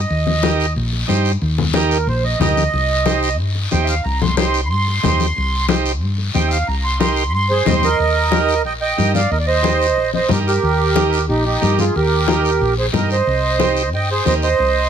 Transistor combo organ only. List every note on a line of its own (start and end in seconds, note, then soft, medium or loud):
0.43 0.66 D#4 loud
0.43 0.66 G4 medium
0.43 0.66 A#4 loud
1.08 1.32 D#4 medium
1.08 1.32 G4 medium
1.08 1.32 C5 medium
1.74 1.98 D#4 medium
1.74 1.98 G4 medium
1.74 1.98 A#4 loud
2.40 2.64 D#4 medium
2.40 2.64 G4 medium
2.40 2.64 A#4 medium
3.06 3.29 D#4 medium
3.06 3.29 G4 medium
3.06 3.30 C5 loud
3.71 3.95 D#4 medium
3.71 3.95 G4 medium
3.71 3.95 C5 medium
4.37 4.61 D#4 medium
4.37 4.61 G4 medium
4.37 4.61 C5 medium
5.03 5.26 D#4 medium
5.03 5.27 G4 medium
5.03 5.27 C5 medium
5.68 5.92 D#4 medium
5.68 5.92 G4 medium
5.68 5.92 C5 medium
6.34 6.58 D#4 medium
6.34 6.58 G4 medium
6.34 6.58 C5 medium
7.00 7.23 D#4 medium
7.00 7.24 G4 medium
7.00 7.24 A#4 loud
7.65 7.89 D#4 medium
7.65 7.89 G4 medium
7.65 7.89 C5 medium
8.31 8.55 D#4 medium
8.31 8.55 G4 medium
8.31 8.55 A#4 loud
8.97 9.21 D#4 medium
8.97 9.21 G4 medium
8.97 9.21 A#4 medium
9.62 9.86 D#4 medium
9.62 9.86 G4 medium
9.62 9.87 C5 medium
10.29 10.53 D#4 medium
10.29 10.53 G4 medium
10.29 10.53 A#4 medium
10.95 11.19 D#4 loud
10.95 11.19 G4 medium
10.95 11.19 A#4 medium
11.61 11.85 D#4 medium
11.61 11.85 G4 medium
11.61 11.85 A#4 medium
12.27 12.51 D#4 medium
12.27 12.51 G4 medium
12.27 12.51 A#4 medium
12.93 13.16 D#4 medium
12.93 13.17 G4 medium
12.93 13.17 A#4 medium
13.59 13.82 D#4 medium
13.59 13.83 G4 medium
13.59 13.83 C5 loud
14.25 14.48 D#4 medium
14.25 14.49 G4 medium
14.25 14.49 A#4 medium